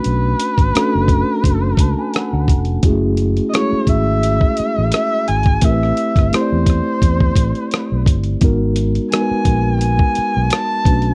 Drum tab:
HH |x-xxx-x-x-x-x-xx|x-xxx-x-x-x-x-xx|x-xxx-x-x-xxx-xx|x-xxx-x-x-x-x-xx|
SD |----r-------r---|----r-------r---|-r-rr-r-----r---|----r-------r---|
BD |---o--o-o-o---o-|o-----o--o-----o|o--o--o-ooo---o-|o-----o--o----o-|